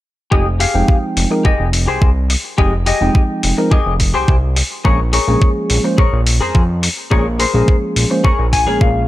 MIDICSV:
0, 0, Header, 1, 6, 480
1, 0, Start_track
1, 0, Key_signature, -4, "minor"
1, 0, Tempo, 566038
1, 274, Time_signature, 4, 2, 24, 8
1, 7699, End_track
2, 0, Start_track
2, 0, Title_t, "Clean electric guitar"
2, 0, Program_c, 0, 27
2, 266, Note_on_c, 0, 67, 102
2, 270, Note_on_c, 0, 68, 92
2, 276, Note_on_c, 0, 75, 102
2, 392, Note_off_c, 0, 67, 0
2, 394, Note_off_c, 0, 68, 0
2, 396, Note_off_c, 0, 75, 0
2, 507, Note_on_c, 0, 67, 78
2, 511, Note_on_c, 0, 68, 74
2, 514, Note_on_c, 0, 77, 88
2, 811, Note_off_c, 0, 67, 0
2, 813, Note_off_c, 0, 68, 0
2, 815, Note_off_c, 0, 77, 0
2, 1227, Note_on_c, 0, 67, 83
2, 1234, Note_on_c, 0, 68, 57
2, 1236, Note_on_c, 0, 75, 84
2, 1412, Note_off_c, 0, 67, 0
2, 1413, Note_off_c, 0, 68, 0
2, 1416, Note_off_c, 0, 75, 0
2, 1589, Note_on_c, 0, 67, 74
2, 1593, Note_on_c, 0, 68, 68
2, 1597, Note_on_c, 0, 72, 80
2, 1771, Note_off_c, 0, 67, 0
2, 1774, Note_off_c, 0, 68, 0
2, 1775, Note_off_c, 0, 72, 0
2, 2186, Note_on_c, 0, 67, 107
2, 2191, Note_on_c, 0, 68, 91
2, 2195, Note_on_c, 0, 75, 110
2, 2312, Note_off_c, 0, 67, 0
2, 2314, Note_off_c, 0, 68, 0
2, 2317, Note_off_c, 0, 75, 0
2, 2426, Note_on_c, 0, 67, 76
2, 2434, Note_on_c, 0, 68, 66
2, 2435, Note_on_c, 0, 75, 90
2, 2732, Note_off_c, 0, 67, 0
2, 2733, Note_off_c, 0, 68, 0
2, 2736, Note_off_c, 0, 75, 0
2, 3148, Note_on_c, 0, 67, 76
2, 3150, Note_on_c, 0, 68, 75
2, 3159, Note_on_c, 0, 75, 77
2, 3332, Note_off_c, 0, 67, 0
2, 3334, Note_off_c, 0, 68, 0
2, 3335, Note_off_c, 0, 75, 0
2, 3510, Note_on_c, 0, 67, 74
2, 3514, Note_on_c, 0, 68, 69
2, 3518, Note_on_c, 0, 72, 81
2, 3692, Note_off_c, 0, 67, 0
2, 3694, Note_off_c, 0, 68, 0
2, 3696, Note_off_c, 0, 72, 0
2, 4109, Note_on_c, 0, 68, 108
2, 4113, Note_on_c, 0, 70, 94
2, 4117, Note_on_c, 0, 73, 119
2, 4234, Note_off_c, 0, 68, 0
2, 4235, Note_off_c, 0, 70, 0
2, 4237, Note_off_c, 0, 73, 0
2, 4348, Note_on_c, 0, 68, 82
2, 4357, Note_on_c, 0, 70, 67
2, 4358, Note_on_c, 0, 73, 92
2, 4653, Note_off_c, 0, 68, 0
2, 4655, Note_off_c, 0, 70, 0
2, 4657, Note_off_c, 0, 73, 0
2, 5070, Note_on_c, 0, 68, 79
2, 5077, Note_on_c, 0, 70, 60
2, 5079, Note_on_c, 0, 73, 86
2, 5254, Note_off_c, 0, 68, 0
2, 5255, Note_off_c, 0, 70, 0
2, 5257, Note_off_c, 0, 73, 0
2, 5432, Note_on_c, 0, 68, 75
2, 5434, Note_on_c, 0, 70, 66
2, 5442, Note_on_c, 0, 72, 67
2, 5613, Note_off_c, 0, 68, 0
2, 5615, Note_off_c, 0, 70, 0
2, 5617, Note_off_c, 0, 72, 0
2, 6029, Note_on_c, 0, 68, 105
2, 6033, Note_on_c, 0, 70, 96
2, 6038, Note_on_c, 0, 73, 117
2, 6154, Note_off_c, 0, 68, 0
2, 6155, Note_off_c, 0, 70, 0
2, 6158, Note_off_c, 0, 73, 0
2, 6268, Note_on_c, 0, 68, 81
2, 6272, Note_on_c, 0, 70, 74
2, 6276, Note_on_c, 0, 72, 92
2, 6572, Note_off_c, 0, 68, 0
2, 6574, Note_off_c, 0, 70, 0
2, 6576, Note_off_c, 0, 72, 0
2, 6987, Note_on_c, 0, 68, 74
2, 6994, Note_on_c, 0, 73, 86
2, 6995, Note_on_c, 0, 70, 59
2, 7172, Note_off_c, 0, 68, 0
2, 7174, Note_off_c, 0, 70, 0
2, 7175, Note_off_c, 0, 73, 0
2, 7231, Note_on_c, 0, 80, 68
2, 7348, Note_on_c, 0, 68, 70
2, 7352, Note_on_c, 0, 70, 67
2, 7356, Note_on_c, 0, 73, 81
2, 7456, Note_off_c, 0, 80, 0
2, 7471, Note_on_c, 0, 77, 67
2, 7531, Note_off_c, 0, 68, 0
2, 7533, Note_off_c, 0, 70, 0
2, 7535, Note_off_c, 0, 73, 0
2, 7695, Note_off_c, 0, 77, 0
2, 7699, End_track
3, 0, Start_track
3, 0, Title_t, "Tine electric piano"
3, 0, Program_c, 1, 4
3, 268, Note_on_c, 1, 53, 82
3, 272, Note_on_c, 1, 56, 75
3, 272, Note_on_c, 1, 60, 76
3, 274, Note_on_c, 1, 63, 75
3, 278, Note_on_c, 1, 67, 90
3, 373, Note_off_c, 1, 53, 0
3, 375, Note_off_c, 1, 56, 0
3, 375, Note_off_c, 1, 60, 0
3, 376, Note_off_c, 1, 63, 0
3, 378, Note_off_c, 1, 67, 0
3, 628, Note_on_c, 1, 53, 75
3, 630, Note_on_c, 1, 56, 72
3, 632, Note_on_c, 1, 60, 70
3, 634, Note_on_c, 1, 63, 69
3, 637, Note_on_c, 1, 79, 85
3, 1083, Note_off_c, 1, 53, 0
3, 1084, Note_off_c, 1, 56, 0
3, 1085, Note_off_c, 1, 60, 0
3, 1086, Note_off_c, 1, 63, 0
3, 1087, Note_off_c, 1, 79, 0
3, 1105, Note_on_c, 1, 53, 72
3, 1107, Note_on_c, 1, 56, 69
3, 1110, Note_on_c, 1, 60, 67
3, 1112, Note_on_c, 1, 63, 68
3, 1113, Note_on_c, 1, 70, 78
3, 1270, Note_off_c, 1, 53, 0
3, 1271, Note_off_c, 1, 56, 0
3, 1272, Note_off_c, 1, 60, 0
3, 1273, Note_off_c, 1, 63, 0
3, 1274, Note_off_c, 1, 70, 0
3, 2189, Note_on_c, 1, 53, 81
3, 2191, Note_on_c, 1, 56, 74
3, 2192, Note_on_c, 1, 60, 75
3, 2194, Note_on_c, 1, 63, 73
3, 2196, Note_on_c, 1, 67, 94
3, 2293, Note_off_c, 1, 53, 0
3, 2294, Note_off_c, 1, 56, 0
3, 2295, Note_off_c, 1, 60, 0
3, 2296, Note_off_c, 1, 63, 0
3, 2297, Note_off_c, 1, 67, 0
3, 2551, Note_on_c, 1, 53, 79
3, 2553, Note_on_c, 1, 56, 74
3, 2556, Note_on_c, 1, 60, 72
3, 2557, Note_on_c, 1, 63, 74
3, 2559, Note_on_c, 1, 79, 86
3, 3004, Note_off_c, 1, 53, 0
3, 3005, Note_off_c, 1, 56, 0
3, 3007, Note_off_c, 1, 60, 0
3, 3007, Note_off_c, 1, 63, 0
3, 3008, Note_off_c, 1, 79, 0
3, 3031, Note_on_c, 1, 53, 76
3, 3033, Note_on_c, 1, 56, 66
3, 3035, Note_on_c, 1, 60, 69
3, 3037, Note_on_c, 1, 63, 68
3, 3038, Note_on_c, 1, 70, 84
3, 3193, Note_off_c, 1, 53, 0
3, 3193, Note_off_c, 1, 56, 0
3, 3195, Note_off_c, 1, 60, 0
3, 3196, Note_off_c, 1, 63, 0
3, 3196, Note_off_c, 1, 70, 0
3, 4109, Note_on_c, 1, 53, 84
3, 4111, Note_on_c, 1, 56, 75
3, 4113, Note_on_c, 1, 58, 78
3, 4115, Note_on_c, 1, 61, 77
3, 4118, Note_on_c, 1, 68, 94
3, 4214, Note_off_c, 1, 53, 0
3, 4214, Note_off_c, 1, 56, 0
3, 4215, Note_off_c, 1, 58, 0
3, 4216, Note_off_c, 1, 61, 0
3, 4218, Note_off_c, 1, 68, 0
3, 4473, Note_on_c, 1, 53, 82
3, 4475, Note_on_c, 1, 56, 72
3, 4477, Note_on_c, 1, 58, 75
3, 4478, Note_on_c, 1, 61, 75
3, 4481, Note_on_c, 1, 68, 91
3, 4925, Note_off_c, 1, 53, 0
3, 4926, Note_off_c, 1, 56, 0
3, 4927, Note_off_c, 1, 58, 0
3, 4928, Note_off_c, 1, 61, 0
3, 4929, Note_off_c, 1, 68, 0
3, 4951, Note_on_c, 1, 53, 75
3, 4952, Note_on_c, 1, 56, 70
3, 4956, Note_on_c, 1, 58, 70
3, 4958, Note_on_c, 1, 61, 70
3, 4959, Note_on_c, 1, 72, 82
3, 5112, Note_off_c, 1, 53, 0
3, 5113, Note_off_c, 1, 56, 0
3, 5115, Note_off_c, 1, 58, 0
3, 5116, Note_off_c, 1, 61, 0
3, 5117, Note_off_c, 1, 72, 0
3, 6027, Note_on_c, 1, 53, 84
3, 6029, Note_on_c, 1, 56, 76
3, 6031, Note_on_c, 1, 58, 77
3, 6033, Note_on_c, 1, 61, 79
3, 6035, Note_on_c, 1, 68, 88
3, 6132, Note_off_c, 1, 53, 0
3, 6133, Note_off_c, 1, 56, 0
3, 6135, Note_off_c, 1, 58, 0
3, 6136, Note_off_c, 1, 61, 0
3, 6137, Note_off_c, 1, 68, 0
3, 6390, Note_on_c, 1, 53, 77
3, 6391, Note_on_c, 1, 56, 71
3, 6394, Note_on_c, 1, 58, 72
3, 6396, Note_on_c, 1, 61, 73
3, 6399, Note_on_c, 1, 68, 87
3, 6844, Note_off_c, 1, 53, 0
3, 6844, Note_off_c, 1, 56, 0
3, 6846, Note_off_c, 1, 58, 0
3, 6846, Note_off_c, 1, 61, 0
3, 6848, Note_off_c, 1, 68, 0
3, 6870, Note_on_c, 1, 53, 75
3, 6872, Note_on_c, 1, 56, 70
3, 6874, Note_on_c, 1, 58, 70
3, 6876, Note_on_c, 1, 61, 72
3, 6878, Note_on_c, 1, 72, 83
3, 7032, Note_off_c, 1, 53, 0
3, 7033, Note_off_c, 1, 56, 0
3, 7034, Note_off_c, 1, 58, 0
3, 7035, Note_off_c, 1, 61, 0
3, 7036, Note_off_c, 1, 72, 0
3, 7344, Note_on_c, 1, 53, 73
3, 7348, Note_on_c, 1, 56, 65
3, 7352, Note_on_c, 1, 58, 65
3, 7356, Note_on_c, 1, 61, 65
3, 7361, Note_on_c, 1, 68, 77
3, 7699, Note_off_c, 1, 53, 0
3, 7699, Note_off_c, 1, 56, 0
3, 7699, Note_off_c, 1, 58, 0
3, 7699, Note_off_c, 1, 61, 0
3, 7699, Note_off_c, 1, 68, 0
3, 7699, End_track
4, 0, Start_track
4, 0, Title_t, "Analog synth bass"
4, 0, Program_c, 2, 38
4, 270, Note_on_c, 2, 29, 96
4, 561, Note_off_c, 2, 29, 0
4, 631, Note_on_c, 2, 29, 76
4, 707, Note_off_c, 2, 29, 0
4, 990, Note_on_c, 2, 29, 83
4, 1068, Note_off_c, 2, 29, 0
4, 1229, Note_on_c, 2, 29, 39
4, 1329, Note_off_c, 2, 29, 0
4, 1355, Note_on_c, 2, 29, 78
4, 1592, Note_off_c, 2, 29, 0
4, 1598, Note_on_c, 2, 36, 41
4, 1691, Note_off_c, 2, 36, 0
4, 1709, Note_on_c, 2, 36, 79
4, 2000, Note_off_c, 2, 36, 0
4, 2191, Note_on_c, 2, 29, 94
4, 2481, Note_off_c, 2, 29, 0
4, 2554, Note_on_c, 2, 29, 80
4, 2629, Note_off_c, 2, 29, 0
4, 2915, Note_on_c, 2, 29, 78
4, 2990, Note_off_c, 2, 29, 0
4, 3275, Note_on_c, 2, 29, 81
4, 3512, Note_off_c, 2, 29, 0
4, 3517, Note_on_c, 2, 36, 38
4, 3611, Note_off_c, 2, 36, 0
4, 3631, Note_on_c, 2, 36, 85
4, 3921, Note_off_c, 2, 36, 0
4, 4114, Note_on_c, 2, 34, 98
4, 4402, Note_off_c, 2, 34, 0
4, 4476, Note_on_c, 2, 34, 80
4, 4550, Note_off_c, 2, 34, 0
4, 4835, Note_on_c, 2, 34, 83
4, 4911, Note_off_c, 2, 34, 0
4, 5073, Note_on_c, 2, 34, 41
4, 5171, Note_off_c, 2, 34, 0
4, 5197, Note_on_c, 2, 34, 84
4, 5432, Note_off_c, 2, 34, 0
4, 5552, Note_on_c, 2, 41, 82
4, 5842, Note_off_c, 2, 41, 0
4, 6035, Note_on_c, 2, 34, 99
4, 6323, Note_off_c, 2, 34, 0
4, 6396, Note_on_c, 2, 34, 80
4, 6469, Note_off_c, 2, 34, 0
4, 6752, Note_on_c, 2, 34, 80
4, 6829, Note_off_c, 2, 34, 0
4, 7114, Note_on_c, 2, 34, 83
4, 7350, Note_off_c, 2, 34, 0
4, 7355, Note_on_c, 2, 34, 39
4, 7450, Note_off_c, 2, 34, 0
4, 7473, Note_on_c, 2, 34, 80
4, 7699, Note_off_c, 2, 34, 0
4, 7699, End_track
5, 0, Start_track
5, 0, Title_t, "Muted clean electric guitar strokes"
5, 1109, Note_on_c, 9, 29, 28
5, 1194, Note_off_c, 9, 29, 0
5, 1947, Note_on_c, 9, 29, 30
5, 2032, Note_off_c, 9, 29, 0
5, 3031, Note_on_c, 9, 29, 28
5, 3116, Note_off_c, 9, 29, 0
5, 3870, Note_on_c, 9, 29, 29
5, 3955, Note_off_c, 9, 29, 0
5, 4955, Note_on_c, 9, 29, 30
5, 5040, Note_off_c, 9, 29, 0
5, 5789, Note_on_c, 9, 29, 30
5, 5873, Note_off_c, 9, 29, 0
5, 6870, Note_on_c, 9, 29, 28
5, 6955, Note_off_c, 9, 29, 0
5, 7699, End_track
6, 0, Start_track
6, 0, Title_t, "Drums"
6, 271, Note_on_c, 9, 36, 100
6, 355, Note_off_c, 9, 36, 0
6, 511, Note_on_c, 9, 46, 98
6, 596, Note_off_c, 9, 46, 0
6, 750, Note_on_c, 9, 36, 108
6, 835, Note_off_c, 9, 36, 0
6, 991, Note_on_c, 9, 46, 93
6, 1076, Note_off_c, 9, 46, 0
6, 1229, Note_on_c, 9, 36, 108
6, 1314, Note_off_c, 9, 36, 0
6, 1469, Note_on_c, 9, 46, 97
6, 1554, Note_off_c, 9, 46, 0
6, 1710, Note_on_c, 9, 36, 110
6, 1795, Note_off_c, 9, 36, 0
6, 1949, Note_on_c, 9, 46, 97
6, 2034, Note_off_c, 9, 46, 0
6, 2191, Note_on_c, 9, 36, 104
6, 2276, Note_off_c, 9, 36, 0
6, 2429, Note_on_c, 9, 46, 95
6, 2514, Note_off_c, 9, 46, 0
6, 2671, Note_on_c, 9, 36, 114
6, 2756, Note_off_c, 9, 36, 0
6, 2910, Note_on_c, 9, 46, 97
6, 2995, Note_off_c, 9, 46, 0
6, 3151, Note_on_c, 9, 36, 116
6, 3236, Note_off_c, 9, 36, 0
6, 3390, Note_on_c, 9, 46, 101
6, 3391, Note_on_c, 9, 36, 56
6, 3475, Note_off_c, 9, 46, 0
6, 3476, Note_off_c, 9, 36, 0
6, 3631, Note_on_c, 9, 36, 112
6, 3716, Note_off_c, 9, 36, 0
6, 3871, Note_on_c, 9, 46, 101
6, 3956, Note_off_c, 9, 46, 0
6, 4113, Note_on_c, 9, 36, 110
6, 4197, Note_off_c, 9, 36, 0
6, 4350, Note_on_c, 9, 46, 103
6, 4435, Note_off_c, 9, 46, 0
6, 4593, Note_on_c, 9, 36, 116
6, 4677, Note_off_c, 9, 36, 0
6, 4832, Note_on_c, 9, 46, 98
6, 4916, Note_off_c, 9, 46, 0
6, 5073, Note_on_c, 9, 36, 117
6, 5158, Note_off_c, 9, 36, 0
6, 5313, Note_on_c, 9, 46, 107
6, 5398, Note_off_c, 9, 46, 0
6, 5553, Note_on_c, 9, 36, 109
6, 5638, Note_off_c, 9, 36, 0
6, 5792, Note_on_c, 9, 46, 103
6, 5877, Note_off_c, 9, 46, 0
6, 6033, Note_on_c, 9, 36, 107
6, 6118, Note_off_c, 9, 36, 0
6, 6272, Note_on_c, 9, 46, 97
6, 6357, Note_off_c, 9, 46, 0
6, 6513, Note_on_c, 9, 36, 116
6, 6598, Note_off_c, 9, 36, 0
6, 6753, Note_on_c, 9, 46, 101
6, 6838, Note_off_c, 9, 46, 0
6, 6992, Note_on_c, 9, 36, 115
6, 7077, Note_off_c, 9, 36, 0
6, 7232, Note_on_c, 9, 36, 57
6, 7233, Note_on_c, 9, 46, 98
6, 7316, Note_off_c, 9, 36, 0
6, 7317, Note_off_c, 9, 46, 0
6, 7471, Note_on_c, 9, 36, 117
6, 7556, Note_off_c, 9, 36, 0
6, 7699, End_track
0, 0, End_of_file